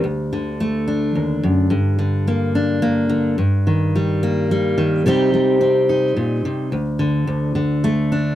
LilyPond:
\new Staff \with { instrumentName = "Steel-string acoustic guitar" } { \clef bass \time 3/4 \key g \minor \tempo 4 = 108 << { r4 a8 d'4. | r4 bes8 d'8 bes4 | r4 g8 bes8 g4 | <g c' ees' g'>4 c'8 ees'4. |
r2 a8 d'8 | } \\ { d,8 d4. ees,8 fis,8 | g,8 d2 d8 | g,8 ees2 ees8 | c8 g4. bes,8 c8 |
d,8 d8 d,8 d4. | } >> }